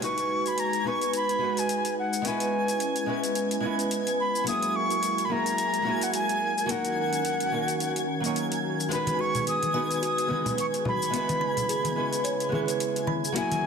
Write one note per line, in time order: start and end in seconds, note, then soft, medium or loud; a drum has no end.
0.00 0.81 G#3 medium
0.00 6.65 G#3 medium
0.00 0.03 B3 medium
0.00 0.83 D#4 medium
0.00 2.23 D#4 medium
0.00 2.22 F#4 medium
0.00 0.83 F#4 medium
0.00 4.43 B4 medium
0.00 13.67 G#5 medium
0.00 0.49 C#6 medium
0.00 13.67 G#6 medium
0.00 closed hi-hat medium
0.00 shaker soft
0.05 0.84 B4 medium
0.18 closed hi-hat soft
0.18 shaker soft
0.46 0.61 B5 medium
0.46 closed hi-hat soft
0.46 shaker medium
0.58 0.89 A#5 medium
0.58 closed hi-hat medium
0.58 shaker soft
0.73 closed hi-hat soft
0.73 shaker soft
0.84 1.37 G#3 medium
0.84 1.38 B3 medium
0.84 1.38 D#4 medium
0.84 1.39 B4 medium
0.84 1.14 C#6 medium
1.01 closed hi-hat soft
1.01 shaker medium
1.13 1.61 B5 medium
1.13 closed hi-hat medium
1.13 shaker soft
1.29 closed hi-hat soft
1.29 shaker soft
1.38 2.20 G#3 medium
1.38 1.43 B3 medium
1.38 2.22 D#4 medium
1.43 2.23 F#4 medium
1.43 2.23 B4 medium
1.57 1.98 G#5 medium
1.57 closed hi-hat soft
1.57 shaker medium
1.69 closed hi-hat medium
1.69 shaker soft
1.85 closed hi-hat soft
1.85 shaker soft
1.99 2.29 F#5 medium
2.13 shaker medium
2.22 3.04 G#3 medium
2.22 3.04 B3 medium
2.22 3.05 C#4 medium
2.22 4.45 C#4 medium
2.22 6.65 E4 medium
2.22 closed hi-hat medium
2.22 shaker soft
2.26 3.06 E4 medium
2.26 3.07 B4 medium
2.26 3.09 G#5 medium
2.40 closed hi-hat soft
2.40 shaker soft
2.68 closed hi-hat soft
2.68 shaker medium
2.80 closed hi-hat medium
2.80 shaker soft
2.96 closed hi-hat soft
2.96 shaker soft
3.06 3.59 G#3 medium
3.06 3.60 B3 medium
3.06 3.61 C#4 medium
3.06 3.61 E4 medium
3.06 3.61 B4 medium
3.24 closed hi-hat soft
3.24 shaker medium
3.35 closed hi-hat medium
3.35 shaker soft
3.51 closed hi-hat soft
3.51 shaker soft
3.60 4.42 G#3 medium
3.60 4.43 B3 medium
3.60 4.44 C#4 medium
3.65 4.45 E4 medium
3.65 4.45 B4 medium
3.79 closed hi-hat soft
3.79 shaker medium
3.91 closed hi-hat medium
3.91 shaker soft
4.07 closed hi-hat soft
4.07 shaker soft
4.20 4.45 B5 medium
4.35 shaker medium
4.44 5.26 F#3 medium
4.44 5.27 A#3 medium
4.44 5.27 C#4 medium
4.44 11.09 F#4 medium
4.44 8.87 A#4 medium
4.44 closed hi-hat medium
4.44 shaker soft
4.48 5.28 E4 medium
4.48 5.29 G#4 medium
4.48 4.78 D#6 medium
4.62 closed hi-hat soft
4.62 shaker soft
4.76 5.26 C#6 loud
4.90 closed hi-hat soft
4.90 shaker medium
5.03 closed hi-hat medium
5.03 shaker soft
5.18 closed hi-hat soft
5.18 shaker soft
5.25 5.81 F#3 medium
5.25 5.33 B5 medium
5.30 5.82 A#3 medium
5.30 5.83 C#4 medium
5.30 5.83 E4 medium
5.30 5.84 G#4 medium
5.30 6.05 A#5 medium
5.46 closed hi-hat soft
5.46 shaker medium
5.58 closed hi-hat medium
5.58 shaker soft
5.74 closed hi-hat soft
5.74 shaker soft
5.82 6.64 F#3 medium
5.82 6.65 A#3 medium
5.82 6.66 C#4 medium
5.87 6.67 E4 medium
5.87 6.67 G#4 medium
6.01 6.14 F#5 medium
6.01 closed hi-hat soft
6.01 shaker medium
6.14 6.72 G#5 medium
6.14 closed hi-hat medium
6.14 shaker medium
6.29 closed hi-hat soft
6.29 shaker soft
6.58 shaker medium
6.66 11.09 D#3 medium
6.66 7.48 F#3 medium
6.66 7.49 A#3 medium
6.66 7.49 C#4 medium
6.66 8.89 C#4 medium
6.66 closed hi-hat medium
6.70 7.50 D#4 medium
6.70 7.51 A#4 medium
6.70 8.37 F#5 medium
6.70 shaker soft
6.85 closed hi-hat soft
6.85 shaker soft
7.13 closed hi-hat soft
7.13 shaker medium
7.25 closed hi-hat medium
7.25 shaker medium
7.40 closed hi-hat soft
7.40 shaker soft
7.51 8.04 F#3 medium
7.51 8.05 A#3 medium
7.51 8.05 C#4 medium
7.51 8.06 D#4 medium
7.51 8.06 A#4 medium
7.68 closed hi-hat soft
7.68 shaker medium
7.80 closed hi-hat medium
7.80 shaker soft
7.96 closed hi-hat soft
7.96 shaker soft
8.20 8.87 F#3 medium
8.20 8.87 A#3 medium
8.20 closed hi-hat soft
8.25 8.89 D#4 medium
8.25 8.90 C#5 medium
8.25 shaker medium
8.36 closed hi-hat medium
8.36 shaker soft
8.52 closed hi-hat soft
8.52 shaker soft
8.80 shaker medium
8.89 9.70 G#3 medium
8.89 8.92 B3 medium
8.89 13.32 B3 medium
8.89 9.72 D#4 medium
8.89 13.67 G#4 medium
8.89 9.18 B4 medium
8.89 closed hi-hat medium
8.89 shaker soft
8.93 9.72 F#4 medium
8.93 9.73 B4 medium
8.93 9.22 B5 medium
9.07 closed hi-hat soft
9.07 high conga medium
9.07 shaker soft
9.19 9.44 F#4 medium
9.19 9.48 C#6 medium
9.35 closed hi-hat soft
9.35 low conga medium
9.35 shaker medium
9.47 9.99 D#6 medium
9.47 closed hi-hat medium
9.47 shaker soft
9.63 closed hi-hat soft
9.63 high conga soft
9.63 shaker soft
9.73 10.26 G#3 medium
9.73 10.27 B3 medium
9.73 10.27 D#4 medium
9.73 10.28 F#4 medium
9.73 10.28 B4 medium
9.73 9.91 G#5 medium
9.91 closed hi-hat soft
9.91 shaker medium
10.02 10.29 F#4 medium
10.02 10.55 D#6 medium
10.02 closed hi-hat soft
10.02 shaker soft
10.18 closed hi-hat soft
10.18 shaker soft
10.27 11.09 G#3 medium
10.27 11.10 B3 medium
10.27 11.10 D#4 medium
10.27 high conga medium
10.31 11.11 F#4 medium
10.31 11.12 B4 medium
10.46 closed hi-hat soft
10.46 low conga medium
10.46 shaker medium
10.58 10.84 B4 medium
10.58 10.66 C#6 medium
10.58 closed hi-hat medium
10.58 shaker soft
10.74 closed hi-hat soft
10.74 shaker soft
10.84 11.11 F#4 medium
10.84 high bongo soft
10.84 high conga medium
10.84 low conga medium
10.88 12.50 B5 medium
11.02 shaker medium
11.10 13.33 C#3 medium
11.10 11.92 G#3 medium
11.10 11.93 B3 medium
11.10 11.94 C#4 medium
11.10 13.67 E4 medium
11.10 closed hi-hat medium
11.14 11.95 E4 medium
11.14 11.95 B4 medium
11.14 shaker soft
11.29 closed hi-hat soft
11.29 high conga medium
11.29 shaker soft
11.41 11.58 B5 medium
11.57 closed hi-hat soft
11.57 low conga medium
11.57 shaker medium
11.69 11.96 G#4 medium
11.69 closed hi-hat medium
11.69 shaker soft
11.84 closed hi-hat soft
11.84 high conga medium
11.84 shaker soft
11.95 12.48 G#3 medium
11.95 12.49 B3 medium
11.95 12.49 C#4 medium
11.95 12.50 E4 medium
11.95 12.50 B4 medium
12.13 closed hi-hat soft
12.13 shaker medium
12.24 12.51 C#5 medium
12.24 closed hi-hat medium
12.24 shaker soft
12.40 closed hi-hat soft
12.40 shaker soft
12.49 13.31 G#3 medium
12.49 13.32 B3 medium
12.49 13.33 C#4 medium
12.49 12.78 G#4 medium
12.49 high conga medium
12.54 13.33 E4 medium
12.54 13.34 B4 medium
12.68 closed hi-hat soft
12.68 shaker medium
12.80 closed hi-hat medium
12.80 shaker soft
12.96 closed hi-hat soft
12.96 high bongo soft
12.96 shaker soft
13.07 13.24 B5 medium
13.07 high conga medium
13.25 shaker medium
13.32 13.67 F#3 medium
13.32 13.67 A#3 medium
13.32 13.67 C#4 medium
13.32 13.62 F#4 medium
13.32 closed hi-hat medium
13.37 13.67 E4 medium
13.37 13.67 G#4 loud
13.37 13.67 G#5 medium
13.37 shaker soft
13.51 closed hi-hat soft
13.51 high conga medium
13.51 shaker soft